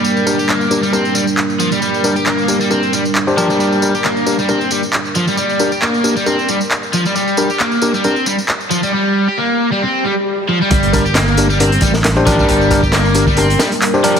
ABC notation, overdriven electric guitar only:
X:1
M:4/4
L:1/16
Q:"Swing 16ths" 1/4=135
K:Gm
V:1 name="Overdriven electric guitar" clef=bass
G,3 G B,3 G, C2 G, z3 F, G, | G,3 G B,3 G, C2 G, z3 F, G, | G,3 G B,3 G, C2 G, z3 F, G, | G,3 G B,3 G, C2 G, z3 F, G, |
G,3 G B,3 G, C2 G, z3 F, G, | G,3 G B,3 G, C2 G, z3 F, G, | G,3 G B,3 G, C2 G, z3 F, G, | G,3 G B,3 G, C2 G, z3 F, G, |]